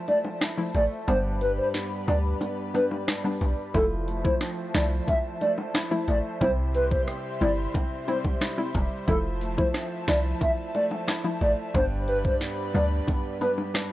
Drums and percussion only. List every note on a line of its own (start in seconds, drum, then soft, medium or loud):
0.08 closed hi-hat soft
0.08 high bongo medium
0.25 high bongo medium
0.41 cross-stick medium
0.41 snare loud
0.41 closed hi-hat medium
0.41 high bongo medium
0.58 high bongo soft
0.74 closed hi-hat medium
0.74 low bongo medium
1.08 closed hi-hat medium
1.08 high bongo medium
1.41 closed hi-hat medium
1.74 snare medium
1.74 closed hi-hat medium
2.08 closed hi-hat soft
2.08 low bongo medium
2.41 closed hi-hat medium
2.41 high bongo medium
2.75 closed hi-hat medium
2.75 high bongo soft
2.91 high bongo medium
3.08 cross-stick medium
3.08 snare loud
3.08 closed hi-hat medium
3.08 high bongo medium
3.25 high bongo medium
3.41 closed hi-hat medium
3.41 low bongo medium
3.74 kick loud
3.74 closed hi-hat medium
3.74 high bongo medium
4.08 closed hi-hat medium
4.25 kick loud
4.41 cross-stick medium
4.41 snare medium
4.41 closed hi-hat medium
4.75 snare loud
4.75 closed hi-hat soft
4.75 low bongo medium
5.08 kick loud
5.08 closed hi-hat medium
5.08 high bongo medium
5.41 closed hi-hat medium
5.41 high bongo medium
5.58 high bongo medium
5.74 cross-stick medium
5.74 snare loud
5.74 closed hi-hat medium
5.74 high bongo medium
5.91 high bongo medium
6.08 closed hi-hat medium
6.08 low bongo medium
6.41 kick loud
6.41 closed hi-hat medium
6.41 high bongo medium
6.74 closed hi-hat medium
6.91 kick loud
7.08 cross-stick medium
7.08 closed hi-hat medium
7.41 closed hi-hat soft
7.41 low bongo medium
7.74 kick loud
7.74 closed hi-hat medium
7.74 high bongo medium
8.08 closed hi-hat soft
8.08 high bongo medium
8.25 kick medium
8.25 high bongo medium
8.41 cross-stick medium
8.41 snare loud
8.41 closed hi-hat medium
8.41 high bongo medium
8.58 high bongo medium
8.74 kick loud
8.74 closed hi-hat medium
8.74 low bongo medium
9.08 kick loud
9.08 closed hi-hat medium
9.08 high bongo medium
9.41 closed hi-hat medium
9.58 kick loud
9.74 cross-stick medium
9.74 snare medium
9.74 closed hi-hat medium
10.08 snare loud
10.08 closed hi-hat soft
10.08 low bongo medium
10.41 kick loud
10.41 closed hi-hat medium
10.41 high bongo medium
10.75 closed hi-hat medium
10.75 high bongo soft
10.91 high bongo medium
11.08 cross-stick medium
11.08 snare loud
11.08 closed hi-hat medium
11.08 high bongo medium
11.24 high bongo medium
11.41 closed hi-hat medium
11.41 low bongo medium
11.74 kick loud
11.74 closed hi-hat medium
11.74 high bongo medium
12.08 closed hi-hat medium
12.25 kick loud
12.41 snare medium
12.41 closed hi-hat medium
12.75 closed hi-hat soft
12.75 low bongo medium
13.08 kick loud
13.08 closed hi-hat medium
13.08 high bongo medium
13.41 closed hi-hat soft
13.41 high bongo medium
13.58 high bongo medium
13.74 cross-stick medium
13.74 snare loud
13.74 closed hi-hat medium
13.74 high bongo medium